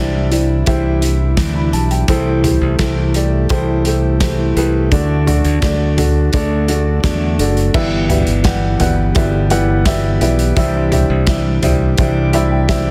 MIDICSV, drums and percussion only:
0, 0, Header, 1, 2, 480
1, 0, Start_track
1, 0, Key_signature, 1, "major"
1, 0, Tempo, 706714
1, 1417, Time_signature, 4, 2, 24, 8
1, 8767, End_track
2, 0, Start_track
2, 0, Title_t, "Drums"
2, 215, Note_on_c, 9, 42, 80
2, 283, Note_off_c, 9, 42, 0
2, 451, Note_on_c, 9, 42, 73
2, 456, Note_on_c, 9, 36, 107
2, 519, Note_off_c, 9, 42, 0
2, 524, Note_off_c, 9, 36, 0
2, 694, Note_on_c, 9, 42, 72
2, 762, Note_off_c, 9, 42, 0
2, 931, Note_on_c, 9, 42, 98
2, 932, Note_on_c, 9, 38, 110
2, 933, Note_on_c, 9, 36, 109
2, 999, Note_off_c, 9, 42, 0
2, 1000, Note_off_c, 9, 38, 0
2, 1001, Note_off_c, 9, 36, 0
2, 1177, Note_on_c, 9, 42, 63
2, 1245, Note_off_c, 9, 42, 0
2, 1296, Note_on_c, 9, 42, 49
2, 1364, Note_off_c, 9, 42, 0
2, 1413, Note_on_c, 9, 42, 83
2, 1415, Note_on_c, 9, 36, 105
2, 1481, Note_off_c, 9, 42, 0
2, 1482, Note_off_c, 9, 36, 0
2, 1657, Note_on_c, 9, 43, 60
2, 1658, Note_on_c, 9, 42, 68
2, 1724, Note_off_c, 9, 43, 0
2, 1726, Note_off_c, 9, 42, 0
2, 1893, Note_on_c, 9, 42, 79
2, 1896, Note_on_c, 9, 36, 104
2, 1896, Note_on_c, 9, 38, 102
2, 1961, Note_off_c, 9, 42, 0
2, 1964, Note_off_c, 9, 36, 0
2, 1964, Note_off_c, 9, 38, 0
2, 2135, Note_on_c, 9, 42, 84
2, 2203, Note_off_c, 9, 42, 0
2, 2373, Note_on_c, 9, 42, 69
2, 2379, Note_on_c, 9, 36, 109
2, 2441, Note_off_c, 9, 42, 0
2, 2447, Note_off_c, 9, 36, 0
2, 2615, Note_on_c, 9, 42, 71
2, 2683, Note_off_c, 9, 42, 0
2, 2856, Note_on_c, 9, 38, 103
2, 2856, Note_on_c, 9, 42, 100
2, 2858, Note_on_c, 9, 36, 99
2, 2923, Note_off_c, 9, 42, 0
2, 2924, Note_off_c, 9, 38, 0
2, 2926, Note_off_c, 9, 36, 0
2, 3102, Note_on_c, 9, 42, 65
2, 3170, Note_off_c, 9, 42, 0
2, 3339, Note_on_c, 9, 42, 86
2, 3340, Note_on_c, 9, 36, 97
2, 3407, Note_off_c, 9, 42, 0
2, 3408, Note_off_c, 9, 36, 0
2, 3582, Note_on_c, 9, 43, 62
2, 3584, Note_on_c, 9, 42, 70
2, 3650, Note_off_c, 9, 43, 0
2, 3652, Note_off_c, 9, 42, 0
2, 3699, Note_on_c, 9, 42, 50
2, 3767, Note_off_c, 9, 42, 0
2, 3817, Note_on_c, 9, 42, 79
2, 3820, Note_on_c, 9, 36, 111
2, 3821, Note_on_c, 9, 38, 99
2, 3885, Note_off_c, 9, 42, 0
2, 3888, Note_off_c, 9, 36, 0
2, 3889, Note_off_c, 9, 38, 0
2, 4061, Note_on_c, 9, 42, 83
2, 4062, Note_on_c, 9, 43, 67
2, 4129, Note_off_c, 9, 42, 0
2, 4130, Note_off_c, 9, 43, 0
2, 4297, Note_on_c, 9, 42, 73
2, 4303, Note_on_c, 9, 36, 107
2, 4365, Note_off_c, 9, 42, 0
2, 4371, Note_off_c, 9, 36, 0
2, 4539, Note_on_c, 9, 42, 71
2, 4607, Note_off_c, 9, 42, 0
2, 4779, Note_on_c, 9, 36, 103
2, 4779, Note_on_c, 9, 42, 95
2, 4780, Note_on_c, 9, 38, 106
2, 4847, Note_off_c, 9, 36, 0
2, 4847, Note_off_c, 9, 42, 0
2, 4848, Note_off_c, 9, 38, 0
2, 5021, Note_on_c, 9, 42, 68
2, 5089, Note_off_c, 9, 42, 0
2, 5141, Note_on_c, 9, 42, 47
2, 5209, Note_off_c, 9, 42, 0
2, 5258, Note_on_c, 9, 49, 95
2, 5259, Note_on_c, 9, 36, 102
2, 5326, Note_off_c, 9, 49, 0
2, 5327, Note_off_c, 9, 36, 0
2, 5498, Note_on_c, 9, 43, 64
2, 5500, Note_on_c, 9, 42, 67
2, 5566, Note_off_c, 9, 43, 0
2, 5568, Note_off_c, 9, 42, 0
2, 5615, Note_on_c, 9, 42, 49
2, 5683, Note_off_c, 9, 42, 0
2, 5732, Note_on_c, 9, 42, 80
2, 5736, Note_on_c, 9, 38, 104
2, 5737, Note_on_c, 9, 36, 112
2, 5800, Note_off_c, 9, 42, 0
2, 5804, Note_off_c, 9, 38, 0
2, 5805, Note_off_c, 9, 36, 0
2, 5975, Note_on_c, 9, 42, 84
2, 5976, Note_on_c, 9, 43, 69
2, 6043, Note_off_c, 9, 42, 0
2, 6044, Note_off_c, 9, 43, 0
2, 6213, Note_on_c, 9, 42, 76
2, 6220, Note_on_c, 9, 36, 115
2, 6281, Note_off_c, 9, 42, 0
2, 6288, Note_off_c, 9, 36, 0
2, 6455, Note_on_c, 9, 42, 79
2, 6523, Note_off_c, 9, 42, 0
2, 6694, Note_on_c, 9, 38, 108
2, 6694, Note_on_c, 9, 42, 107
2, 6695, Note_on_c, 9, 36, 115
2, 6761, Note_off_c, 9, 42, 0
2, 6762, Note_off_c, 9, 38, 0
2, 6763, Note_off_c, 9, 36, 0
2, 6936, Note_on_c, 9, 42, 71
2, 7004, Note_off_c, 9, 42, 0
2, 7056, Note_on_c, 9, 42, 53
2, 7124, Note_off_c, 9, 42, 0
2, 7176, Note_on_c, 9, 42, 87
2, 7177, Note_on_c, 9, 36, 107
2, 7244, Note_off_c, 9, 36, 0
2, 7244, Note_off_c, 9, 42, 0
2, 7415, Note_on_c, 9, 43, 62
2, 7417, Note_on_c, 9, 42, 70
2, 7483, Note_off_c, 9, 43, 0
2, 7485, Note_off_c, 9, 42, 0
2, 7652, Note_on_c, 9, 42, 83
2, 7656, Note_on_c, 9, 36, 108
2, 7656, Note_on_c, 9, 38, 107
2, 7720, Note_off_c, 9, 42, 0
2, 7724, Note_off_c, 9, 36, 0
2, 7724, Note_off_c, 9, 38, 0
2, 7896, Note_on_c, 9, 42, 90
2, 7897, Note_on_c, 9, 43, 73
2, 7964, Note_off_c, 9, 42, 0
2, 7965, Note_off_c, 9, 43, 0
2, 8134, Note_on_c, 9, 42, 76
2, 8140, Note_on_c, 9, 36, 113
2, 8201, Note_off_c, 9, 42, 0
2, 8208, Note_off_c, 9, 36, 0
2, 8376, Note_on_c, 9, 42, 73
2, 8444, Note_off_c, 9, 42, 0
2, 8618, Note_on_c, 9, 36, 115
2, 8618, Note_on_c, 9, 38, 112
2, 8618, Note_on_c, 9, 42, 108
2, 8686, Note_off_c, 9, 36, 0
2, 8686, Note_off_c, 9, 38, 0
2, 8686, Note_off_c, 9, 42, 0
2, 8767, End_track
0, 0, End_of_file